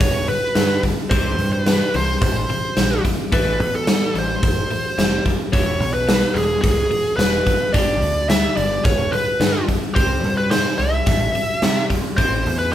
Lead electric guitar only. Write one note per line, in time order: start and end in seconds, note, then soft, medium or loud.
0.01 0.28 C#5 medium
0.29 0.80 B4 medium
1.10 1.49 C5 loud
1.53 1.64 C5 medium
1.64 1.95 B4 medium
1.96 2.22 C5 medium
2.23 3.01 C5 medium
3.33 3.75 B4 medium
3.75 4.17 A4 medium
4.18 5.23 C5 medium
5.53 5.93 C#5 medium
5.94 6.37 B4 medium
6.34 6.60 G#4 medium
6.62 7.16 G#4 medium
7.17 7.75 B4 medium
7.73 8.29 D5 medium
8.29 8.56 E5 medium
8.57 8.84 D5 medium
8.85 9.13 C#5 medium
9.12 9.64 B4 medium
9.95 10.37 C5 medium
10.38 10.50 B4 medium
10.51 10.77 C5 medium
10.78 11.85 E5 medium
12.17 12.58 C5 medium
12.59 12.72 B4 medium